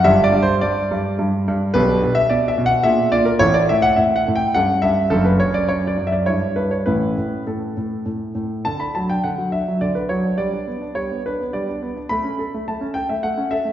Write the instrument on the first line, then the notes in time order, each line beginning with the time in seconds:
grand piano
0.04 G1 G2 D4 G4 E5
0.24 D5
0.32 G2
0.43 C5
0.61 G2 D5
0.91 G2
1.19 G2
1.48 G2
1.74 B1 B2 D4 G4 B4
2.04 B2
2.15 E5
2.30 B2 D5
2.48 E5
2.58 B2
2.66 F#5
2.83 A#2 D4 G#4 E5
3.12 A#2 D5
3.25 A#4
3.39 A1 A2 E4 A4 C#5
3.54 D5
3.69 A2 E5
3.82 F#5
3.96 A2 E5
4.16 F#5
4.28 A2
4.36 G5
4.54 G2 C#4 A4 F#5
4.82 G2 E5
5.10 F#1 F#2 D4 A4
5.25 B4
5.40 F#2 C#5
5.54 D5
5.68 F#2 C#5
5.87 D5
5.98 F#2
6.07 E5
6.12 D5
6.26 G2 D4 E4 C#5
6.56 G2 B4
6.71 C#5
6.86 A1 A2 C#4 E4 B4
7.17 A2
7.47 A2 A4
7.77 A2
8.06 A2
8.35 A2
8.65 D3 A5
8.80 D4 B5
8.95 F#3 A5
9.10 D4 G5
9.24 D3 F#5
9.38 F#3
9.52 D4 E5
9.68 F#3
9.81 D3 D5
9.95 D4 B4
10.09 F#3 C#5
10.24 D4
10.38 G3 D5
10.53 D4
10.67 B3
10.82 D4
10.95 G3 C#5
11.11 B3
11.26 D4 B4
11.41 B3
11.53 G3 D5
11.69 D4
11.82 B3
11.97 D4
12.09 A3 B5
12.23 C#4
12.39 A4
12.54 A3
12.68 A3 A5
12.81 C#4
12.94 A4 G5
13.09 A3 E5
13.23 A3 F#5
13.37 C#4
13.51 A4 E5
13.65 A3